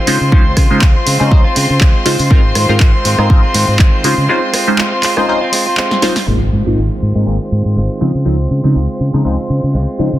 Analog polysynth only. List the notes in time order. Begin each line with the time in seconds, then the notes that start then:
0.07 G#3 C#4 D#4 F4 C5
0.32 G#3 C#4 D#4 F4 C5
0.70 G#3 C#4 D#4 F4 C5
1.20 G#3 C#4 D#4 F4 C5
1.31 G#3 C#4 D#4 F4 C5
2.05 G#3 C#4 D#4 F4 C5
2.30 G#3 C4 D#4 F4 A#4
2.69 G#3 C4 D#4 F4 A#4
3.19 G#3 C4 D#4 F4 A#4
3.30 G#3 C4 D#4 F4 A#4
4.04 G#3 C#4 D#4 F4 C5
4.29 G#3 C#4 D#4 F4 C5
4.67 G#3 C#4 D#4 F4 C5
5.17 G#3 C#4 D#4 F4 C5
5.28 G#3 C#4 D#4 F4 C5
6.02 G#3 C#4 D#4 F4 C5
6.27 G#3 A#3 C4 D#4 F4
6.66 G#3 A#3 C4 D#4 F4
7.15 G#3 A#3 C4 D#4 F4
7.26 G#3 A#3 C4 D#4 F4
8.00 C#3 F3 G#3 C4 D#4
8.25 C#3 F3 G#3 C4 D#4
8.64 C#3 F3 G#3 C4 D#4
9.13 C#3 F3 G#3 C4 D#4
9.24 C#3 F3 G#3 C4 D#4
9.99 C#3 F3 G#3 C4 D#4